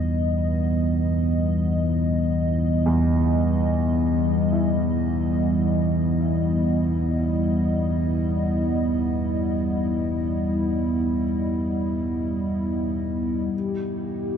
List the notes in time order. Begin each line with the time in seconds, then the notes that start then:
Already playing: E2 E3 G3 B3 E4 B4 D#5
2.86 E2
4.52 E4
13.53 E2 B2 G4